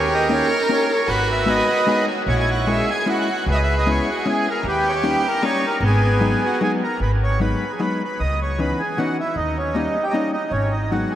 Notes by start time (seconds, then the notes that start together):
Already playing: D#2 G4 A#4 C#5
0.14 D#5
0.29 A#3 C#4 D#4 G4 C#5
0.62 A#4
0.69 A#3 C#4 D#4 G4 C#5
0.93 C#5
1.08 G#1 F#4 B4 F#5
1.32 E5
1.46 G#3 B3 D#4 F#4 B4 D#5
1.86 G#3 B3 D#4 F#4 G#4
2.08 F#4
2.26 A#1 E4 C#5 G#5
2.31 F#5
2.40 G#5
2.51 F#5
2.67 G#3 A#3 C#4 E4 G#4
2.72 E5
2.91 G#5
3.06 G#3 A#3 C#4 E4 F#4 F#5
3.47 C#2 G#4
3.51 B4 D#5 E5
3.64 E5
3.78 D#5
3.86 G#3 B3 C#4 E4
3.91 C#5
4.11 F#4
4.26 G#3 B3 C#4 E4 G#4
4.50 A#4
4.63 D#2 G4
4.67 G4 B4
4.89 B4 C#5
4.95 C#5
5.04 G3 A#3 C#4 D#4 B4
5.28 A#4
5.42 G3 A#3 C#4 D#4 C#5
5.67 A#4
5.80 G#1 B3
5.86 G#4
6.21 F#3 G#3 B3 D#4
6.45 F#4
6.61 F#3 G#3 B3 D#4 G#4
6.84 A#4
7.00 G#1 B4
7.24 C#5
7.40 F#3 G#3 B3 D#4 B4
7.72 G#4
7.79 F#3 G#3 B3 D#4 B4
8.04 B4
8.20 C#2 D#5
8.42 C#5
8.59 E3 B3 C#4 D#4 B4
8.79 G#4
8.98 E3 B3 C#4 D#4 F#4
9.20 E4
9.36 D#2 D#4
9.57 C#4
9.73 G3 A#3 C#4 D#4
10.03 G4
10.10 G3 A#3 C#4 D#4
10.15 D#4
10.33 D#4
10.51 G#1 C#4
10.72 D#4
10.91 F#3 G#3 B3 D#4 F#4
11.12 G#4